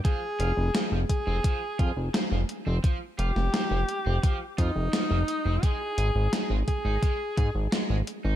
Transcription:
<<
  \new Staff \with { instrumentName = "Alto saxophone" } { \time 4/4 \key f \minor \tempo 4 = 86 aes'4. aes'4. r4 | r8 g'2 ees'4. | aes'4. aes'4. r4 | }
  \new Staff \with { instrumentName = "Overdriven electric guitar" } { \clef bass \time 4/4 \key f \minor f16 r16 f'16 r16 f16 f16 r16 c'16 f16 r16 f'16 r16 f16 f16 r16 c'16 | f16 r16 f'16 r16 f16 f16 r16 c'16 f16 r16 f'16 r16 f16 f16 r16 c'16 | aes16 r16 aes'16 r16 aes16 aes16 r16 ees'16 aes16 r16 aes'16 r16 aes16 aes16 r16 ees'16 | }
  \new Staff \with { instrumentName = "Analog synth bass" } { \clef bass \time 4/4 \key f \minor r8 f,,16 f,,16 r16 f,,16 r16 f,,16 r8 f,16 f,,16 r16 f,,16 r16 f,,16 | r8 f,,16 f,,16 r16 f,,16 r16 f,,16 r8 f,16 f,,16 r16 f,,16 r16 f,,16 | r8 aes,,16 aes,,16 r16 aes,,16 r16 aes,,16 r8 aes,16 aes,,16 r16 aes,,16 r16 aes,,16 | }
  \new DrumStaff \with { instrumentName = "Drums" } \drummode { \time 4/4 <hh bd>8 hh8 <hh sn>8 <hh bd>8 <hh bd>8 <hh bd>8 <hh sn>8 hh8 | <hh bd>8 hh16 sn16 <hh sn>8 hh8 <hh bd>8 <hh bd>8 <hh sn>8 hh8 | <hh bd>8 hh8 <hh sn>8 <hh bd>8 <hh bd>8 <hh bd>8 <hh sn>8 hh8 | }
>>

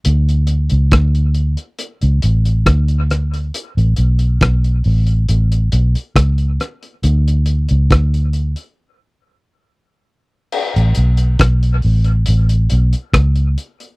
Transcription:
<<
  \new Staff \with { instrumentName = "Fingered electric bass" } { \clef bass \time 4/4 \key a \major \tempo 4 = 69 d,8. cis,16 d,8. r8 cis,16 a,,8 d,4 | r16 a,,16 b,,8 b,,8 a,,8 a,,8 b,,16 r16 cis,8 r8 | d,8. cis,16 d,8. r2 r16 | r16 a,,16 b,,8 b,,8 a,,8 a,,8 b,,16 r16 cis,8 r8 | }
  \new DrumStaff \with { instrumentName = "Drums" } \drummode { \time 4/4 hh16 hh16 hh16 hh16 <hh bd ss>16 hh16 hh16 hh16 hh16 hh16 hh16 hh16 <hh bd ss>16 hh16 <hh ss>16 hh16 | hh16 hh16 hh16 hh16 <hh bd ss>16 hh16 hho16 hh16 hh16 hh16 hh16 hh16 <hh bd ss>16 hh16 <hh ss>16 hh16 | hh16 hh16 hh16 hh16 <hh bd ss>16 hh16 hh16 hh16 r4 r4 | cymc16 hh16 hh16 hh16 <hh bd ss>16 hh16 hho16 hh16 hh16 hh16 hh16 hh16 <hh bd ss>16 hh16 hh16 hh16 | }
>>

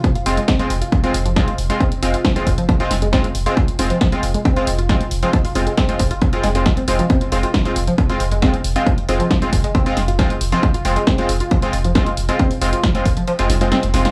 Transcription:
<<
  \new Staff \with { instrumentName = "Supersaw synth" } { \time 4/4 \key f \minor \tempo 4 = 136 r8 <aes c' f'>16 r8 <aes c' f'>16 r8. <aes c' f'>16 r8 <aes c' f'>16 r8 <aes c' f'>16 | r8 <aes c' f'>16 r8 <aes c' f'>16 r8. <aes c' f'>16 r8 <aes c' f'>16 r8 <aes c' f'>16 | r8 <aes c' f'>16 r8 <aes c' f'>16 r8. <aes c' f'>16 r8 <aes c' f'>16 r8 <aes c' f'>16 | r8 <aes c' f'>16 r8 <aes c' f'>16 r8. <aes c' f'>16 r16 <aes c' f'>16 r8 <aes c' f'>16 r16 |
r8 <aes c' f'>16 r8 <aes c' f'>16 r8. <aes c' f'>16 r8 <aes c' f'>16 r8 <aes c' f'>16 | r8 <aes c' f'>16 r8 <aes c' f'>16 r8. <aes c' f'>16 r8 <aes c' f'>16 r8 <aes c' f'>16 | r8 <aes c' f'>16 r8 <aes c' f'>16 r8. <aes c' f'>16 r8 <aes c' f'>16 r8 <aes c' f'>16 | r8 <aes c' f'>16 r8 <aes c' f'>16 r8. <aes c' f'>16 r16 <aes c' f'>16 r8 <aes c' f'>16 r16 | }
  \new Staff \with { instrumentName = "Synth arpeggio sound" } { \clef bass \time 4/4 \key f \minor f16 f'16 r16 aes16 c'16 r8 f'16 f16 r8 f16 f16 f'16 r16 aes16 | c'16 r8 f'16 f16 r8 f16 f16 f'16 r16 aes16 c'16 r8 f'16 | f16 r8 f16 f16 f'16 r16 aes16 c'16 r8 f'16 f16 r8 f16 | f16 f'16 r16 aes16 c'16 r8 f'16 f16 r16 aes16 aes16 f16 c'16 r16 f16 |
c'16 r8 f'16 f16 r8 f16 f16 f'16 r16 aes16 c'16 r8 f'16 | f16 r8 f16 f16 f'16 r16 aes16 c'16 r8 f'16 f16 r8 f16 | f16 f'16 r16 aes16 c'16 r8 f'16 f16 r8 f16 f16 f'16 r16 aes16 | c'16 r8 f'16 f16 r8 f16 f16 f'16 r16 aes16 c'16 r8 f'16 | }
  \new Staff \with { instrumentName = "Sub bass" } { \clef bass \time 4/4 \key f \minor r16 f,,16 f,,16 r8 f,,16 f,,16 r8 f,,16 f,,16 f,,16 r16 f,,16 f,,16 r16 | r16 f,,16 f,,16 r8 f,,16 f,,16 r8 f,,16 f,,16 f,,16 r16 f,,16 f,,16 r16 | r16 f,,16 f,,16 r8 f,,16 f,,16 r8 f,,16 f,,16 f,,16 r16 f,,16 f,,16 r16 | r16 f,,16 f,,16 r8 f,,16 f,,16 r8 f,,16 f,,16 f,,16 r16 f,,16 f,,16 r16 |
r16 f,,16 f,,16 r8 f,,16 f,,16 r8 f,,16 f,,16 f,,16 r16 f,,16 f,,16 r16 | r16 f,,16 f,,16 r8 f,,16 f,,16 r8 f,,16 f,,16 f,,16 r16 f,,16 f,,16 r16 | r16 f,,16 f,,16 r8 f,,16 f,,16 r8 f,,16 f,,16 f,,16 r16 f,,16 f,,16 r16 | r16 f,,16 f,,16 r8 f,,16 f,,16 r8 f,,16 f,,16 f,,16 r16 f,,16 f,,16 r16 | }
  \new DrumStaff \with { instrumentName = "Drums" } \drummode { \time 4/4 <hh bd>16 hh16 hho16 hh16 <hh bd sn>16 hh16 hho16 hh16 <hh bd>16 hh16 hho16 hh16 <hh bd sn>16 hh16 hho16 hh16 | <hh bd>16 hh16 hho16 hh16 <hh bd sn>16 hh16 <hho bd>16 hh16 <hh bd>16 hh16 <hho sn>16 hh16 <hh bd sn>16 hh16 hho16 hh16 | <hh bd>16 hh16 hho16 hh16 <hh bd sn>16 hh16 hho16 hh16 <hh bd>16 hh16 hho16 hh16 <hh bd sn>16 hh16 hho16 hh16 | <hh bd>16 hho16 hho16 hh16 <hh bd sn>16 hh16 <hho bd>16 hh16 <hh bd>16 hh16 <hho sn>16 hh16 <hh bd sn>16 hh16 hho16 hh16 |
<hh bd>16 hh16 hho16 hh16 <hh bd sn>16 hh16 hho16 hh16 <hh bd>16 hh16 hho16 hh16 <hh bd sn>16 hh16 hho16 hh16 | <hh bd>16 hh16 hho16 hh16 <hh bd sn>16 hh16 <hho bd>16 hh16 <hh bd>16 hh16 <hho sn>16 hh16 <hh bd sn>16 hh16 hho16 hh16 | <hh bd>16 hh16 hho16 hh16 <hh bd sn>16 hh16 hho16 hh16 <hh bd>16 hh16 hho16 hh16 <hh bd sn>16 hh16 hho16 hh16 | <hh bd>16 hho16 hho16 hh16 <hh bd sn>16 hh16 <hho bd>16 hh16 hh16 hh16 <hho sn>16 hh16 <hh sn>16 hh16 <hho sn>16 <hh sn>16 | }
>>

